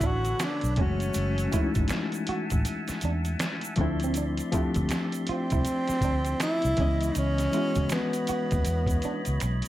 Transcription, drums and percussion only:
0.01 kick medium
0.01 closed hi-hat medium
0.01 shaker soft
0.25 closed hi-hat soft
0.25 shaker soft
0.40 finger snap medium
0.40 snare loud
0.40 closed hi-hat medium
0.40 shaker medium
0.61 closed hi-hat soft
0.61 shaker soft
0.76 kick loud
0.76 closed hi-hat medium
1.00 closed hi-hat soft
1.00 shaker soft
1.14 closed hi-hat medium
1.14 shaker medium
1.38 closed hi-hat soft
1.38 shaker soft
1.52 kick medium
1.52 closed hi-hat medium
1.52 shaker soft
1.75 kick medium
1.75 closed hi-hat soft
1.75 shaker soft
1.88 finger snap medium
1.88 snare loud
1.88 closed hi-hat medium
1.88 shaker soft
2.12 closed hi-hat soft
2.12 shaker soft
2.27 closed hi-hat medium
2.50 kick medium
2.50 closed hi-hat soft
2.50 shaker soft
2.65 closed hi-hat medium
2.65 shaker soft
2.88 snare soft
2.88 closed hi-hat soft
2.88 shaker medium
3.01 closed hi-hat medium
3.01 shaker soft
3.25 closed hi-hat soft
3.25 shaker soft
3.39 finger snap medium
3.39 snare loud
3.39 closed hi-hat medium
3.39 shaker medium
3.61 closed hi-hat soft
3.61 shaker soft
3.76 kick medium
3.76 closed hi-hat medium
4.00 closed hi-hat soft
4.00 shaker soft
4.14 closed hi-hat medium
4.14 shaker medium
4.37 closed hi-hat medium
4.37 shaker soft
4.52 kick medium
4.52 closed hi-hat medium
4.52 shaker soft
4.74 kick medium
4.74 closed hi-hat medium
4.74 shaker soft
4.89 finger snap soft
4.89 snare loud
4.89 closed hi-hat medium
4.89 shaker medium
5.12 closed hi-hat soft
5.12 shaker soft
5.27 closed hi-hat medium
5.50 kick medium
5.50 closed hi-hat soft
5.50 shaker soft
5.65 closed hi-hat medium
5.65 shaker medium
5.88 snare soft
5.88 closed hi-hat soft
5.88 shaker medium
6.01 kick medium
6.01 closed hi-hat medium
6.01 shaker soft
6.25 closed hi-hat soft
6.25 shaker soft
6.40 finger snap medium
6.40 snare loud
6.40 closed hi-hat medium
6.40 shaker medium
6.62 closed hi-hat soft
6.62 shaker soft
6.77 kick medium
6.77 closed hi-hat medium
7.01 closed hi-hat soft
7.01 shaker soft
7.15 closed hi-hat medium
7.15 shaker medium
7.38 snare soft
7.38 closed hi-hat medium
7.38 shaker soft
7.53 closed hi-hat medium
7.53 shaker soft
7.75 kick medium
7.75 closed hi-hat medium
7.75 shaker soft
7.89 finger snap soft
7.89 snare loud
7.89 closed hi-hat medium
7.89 shaker medium
8.13 closed hi-hat soft
8.13 shaker soft
8.27 closed hi-hat medium
8.27 shaker soft
8.51 kick medium
8.51 closed hi-hat soft
8.51 shaker soft
8.65 closed hi-hat medium
8.65 shaker medium
8.87 kick medium
8.87 closed hi-hat soft
8.87 shaker medium
9.02 closed hi-hat medium
9.02 shaker soft
9.25 closed hi-hat soft
9.25 shaker soft
9.40 finger snap soft
9.40 closed hi-hat medium
9.40 shaker medium
9.62 closed hi-hat soft

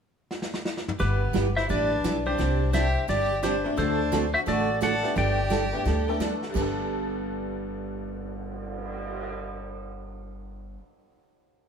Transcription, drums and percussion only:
0.31 snare medium
0.42 snare medium
0.54 snare medium
0.65 snare medium
0.77 snare medium
0.88 mid tom loud
1.00 brush sweep soft
1.00 kick soft
1.00 snare soft
1.35 kick soft
1.35 snare medium
1.35 hi-hat pedal medium
1.57 snare soft
1.70 brush sweep soft
1.70 kick soft
1.70 snare soft
2.04 kick soft
2.04 snare medium
2.04 hi-hat pedal medium
2.39 brush sweep soft
2.39 kick soft
2.39 snare soft
2.74 kick soft
2.74 snare medium
2.74 hi-hat pedal medium
3.09 brush sweep soft
3.09 kick soft
3.09 snare soft
3.43 kick soft
3.43 snare medium
3.43 hi-hat pedal medium
3.78 brush sweep soft
3.78 kick soft
3.78 snare soft
4.12 kick soft
4.12 snare medium
4.12 hi-hat pedal medium
4.47 brush sweep soft
4.47 kick soft
4.47 snare soft
4.82 kick soft
4.82 snare medium
4.82 hi-hat pedal medium
5.03 snare soft
5.16 brush sweep soft
5.16 kick soft
5.16 snare soft
5.51 kick soft
5.51 snare medium
5.51 hi-hat pedal medium
5.86 brush sweep soft
5.86 kick soft
5.86 snare soft
6.20 kick soft
6.20 snare medium
6.20 hi-hat pedal medium
6.43 snare soft
6.55 kick medium
6.55 crash medium
6.77 cymbal swell soft

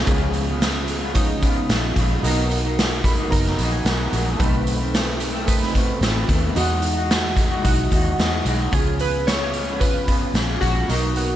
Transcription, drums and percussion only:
0.06 kick loud
0.06 closed hi-hat medium
0.33 closed hi-hat medium
0.62 snare loud
0.62 closed hi-hat medium
0.88 closed hi-hat medium
1.15 kick medium
1.15 closed hi-hat medium
1.42 kick medium
1.42 closed hi-hat medium
1.69 snare loud
1.69 closed hi-hat medium
1.96 kick medium
1.96 closed hi-hat medium
2.24 closed hi-hat medium
2.51 closed hi-hat medium
2.79 snare loud
2.79 closed hi-hat medium
3.04 kick medium
3.04 closed hi-hat medium
3.32 kick medium
3.32 closed hi-hat medium
3.47 snare soft
3.58 closed hi-hat medium
3.86 snare loud
3.86 closed hi-hat medium
4.13 closed hi-hat medium
4.40 kick loud
4.40 closed hi-hat medium
4.67 closed hi-hat medium
4.94 snare loud
4.94 closed hi-hat medium
5.20 closed hi-hat medium
5.48 kick medium
5.48 closed hi-hat medium
5.63 snare soft
5.75 kick medium
5.75 closed hi-hat medium
6.02 snare loud
6.02 closed hi-hat medium
6.29 kick medium
6.29 closed hi-hat medium
6.56 closed hi-hat medium
6.82 closed hi-hat medium
7.11 snare loud
7.11 closed hi-hat medium
7.37 kick medium
7.37 closed hi-hat medium
7.65 kick medium
7.65 closed hi-hat medium
7.91 kick medium
7.91 closed hi-hat medium
8.19 snare loud
8.19 closed hi-hat medium
8.46 closed hi-hat medium
8.73 kick loud
8.73 closed hi-hat medium
8.99 closed hi-hat medium
9.28 snare loud
9.28 closed hi-hat medium
9.53 closed hi-hat medium
9.81 kick medium
9.81 closed hi-hat medium
10.08 kick medium
10.08 closed hi-hat medium
10.35 snare loud
10.35 closed hi-hat medium
10.62 kick medium
10.62 closed hi-hat medium
10.89 closed hi-hat medium
11.16 closed hi-hat medium

